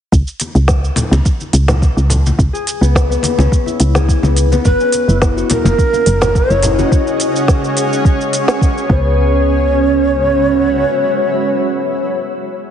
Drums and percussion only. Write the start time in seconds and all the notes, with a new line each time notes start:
0.12 kick, cabasa
0.27 cabasa
0.40 open hi-hat, muted conga, cabasa
0.55 cabasa
0.68 kick, snare, cabasa
0.84 cabasa
0.96 open hi-hat, muted conga, high conga, low conga, cabasa
1.13 muted conga, cabasa
1.26 kick, cabasa
1.40 high conga, cabasa
1.53 open hi-hat, cabasa
1.68 snare, muted conga, low conga, cabasa
1.82 kick, cabasa
1.98 cabasa
2.10 open hi-hat, low conga, cabasa
2.26 high conga, cabasa
2.39 kick, cabasa
2.55 cabasa
2.67 open hi-hat, cabasa
2.83 cabasa
2.95 kick, snare, cabasa
3.12 cabasa
3.23 open hi-hat, muted conga, high conga, cabasa
3.39 muted conga, cabasa
3.52 kick, cabasa
3.66 high conga, cabasa
3.80 open hi-hat, cabasa
3.95 snare, high conga, cabasa
4.09 kick, cabasa
4.23 high conga, cabasa
4.37 open hi-hat, cabasa
4.52 high conga, cabasa
4.65 kick, cabasa
4.80 cabasa
4.92 open hi-hat, muted conga, cabasa
5.09 cabasa
5.22 kick, snare, cabasa
5.38 cabasa
5.50 open hi-hat, muted conga, high conga, low conga, cabasa
5.66 muted conga, cabasa
5.78 kick, cabasa
5.93 high conga, cabasa
6.06 open hi-hat, cabasa
6.21 snare, muted conga, low conga, cabasa
6.35 kick, cabasa
6.50 cabasa
6.63 open hi-hat, low conga, cabasa
6.79 high conga, cabasa
6.92 kick, cabasa
7.07 cabasa
7.20 open hi-hat, cabasa
7.36 cabasa
7.48 kick, snare, cabasa
7.64 cabasa
7.77 open hi-hat, cabasa
7.93 cabasa
8.05 kick, cabasa
8.21 cabasa
8.33 open hi-hat, cabasa
8.48 snare, cabasa
8.61 kick, cabasa
8.78 cabasa
8.90 kick